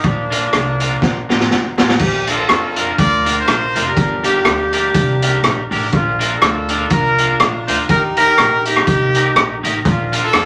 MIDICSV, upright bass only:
0, 0, Header, 1, 2, 480
1, 0, Start_track
1, 0, Key_signature, -2, "major"
1, 0, Tempo, 490597
1, 36, Time_signature, 4, 2, 24, 8
1, 10226, End_track
2, 0, Start_track
2, 0, Title_t, "Upright bass"
2, 0, Program_c, 0, 32
2, 41, Note_on_c, 0, 34, 100
2, 448, Note_off_c, 0, 34, 0
2, 520, Note_on_c, 0, 36, 87
2, 927, Note_off_c, 0, 36, 0
2, 997, Note_on_c, 0, 34, 91
2, 1228, Note_off_c, 0, 34, 0
2, 1269, Note_on_c, 0, 33, 91
2, 1447, Note_off_c, 0, 33, 0
2, 1481, Note_on_c, 0, 31, 90
2, 1711, Note_off_c, 0, 31, 0
2, 1761, Note_on_c, 0, 33, 85
2, 1934, Note_off_c, 0, 33, 0
2, 1957, Note_on_c, 0, 34, 98
2, 2366, Note_off_c, 0, 34, 0
2, 2439, Note_on_c, 0, 41, 95
2, 2847, Note_off_c, 0, 41, 0
2, 2919, Note_on_c, 0, 38, 104
2, 3328, Note_off_c, 0, 38, 0
2, 3404, Note_on_c, 0, 34, 104
2, 3633, Note_off_c, 0, 34, 0
2, 3675, Note_on_c, 0, 29, 89
2, 3851, Note_off_c, 0, 29, 0
2, 3881, Note_on_c, 0, 31, 104
2, 4289, Note_off_c, 0, 31, 0
2, 4359, Note_on_c, 0, 38, 94
2, 4768, Note_off_c, 0, 38, 0
2, 4839, Note_on_c, 0, 36, 101
2, 5248, Note_off_c, 0, 36, 0
2, 5312, Note_on_c, 0, 34, 107
2, 5546, Note_off_c, 0, 34, 0
2, 5586, Note_on_c, 0, 33, 100
2, 5766, Note_off_c, 0, 33, 0
2, 5801, Note_on_c, 0, 34, 109
2, 6209, Note_off_c, 0, 34, 0
2, 6284, Note_on_c, 0, 38, 104
2, 6690, Note_off_c, 0, 38, 0
2, 6757, Note_on_c, 0, 36, 88
2, 7166, Note_off_c, 0, 36, 0
2, 7241, Note_on_c, 0, 34, 103
2, 7471, Note_off_c, 0, 34, 0
2, 7516, Note_on_c, 0, 38, 97
2, 7691, Note_off_c, 0, 38, 0
2, 7721, Note_on_c, 0, 39, 89
2, 8129, Note_off_c, 0, 39, 0
2, 8200, Note_on_c, 0, 34, 97
2, 8608, Note_off_c, 0, 34, 0
2, 8678, Note_on_c, 0, 36, 92
2, 9086, Note_off_c, 0, 36, 0
2, 9154, Note_on_c, 0, 34, 103
2, 9387, Note_off_c, 0, 34, 0
2, 9428, Note_on_c, 0, 33, 91
2, 9606, Note_off_c, 0, 33, 0
2, 9639, Note_on_c, 0, 34, 111
2, 10047, Note_off_c, 0, 34, 0
2, 10112, Note_on_c, 0, 41, 94
2, 10226, Note_off_c, 0, 41, 0
2, 10226, End_track
0, 0, End_of_file